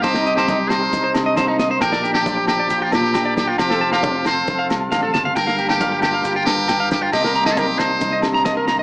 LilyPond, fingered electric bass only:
\new Staff \with { instrumentName = "Fingered electric bass" } { \clef bass \time 4/4 \key c \dorian \tempo 4 = 136 c,2 c,8 c4. | bes,,2 bes,,8 bes,4. | f,,2 f,,8 c,8 a,,8 g,,8 | g,,2 g,,8 g,4. |
c,2 c,8 c4. | }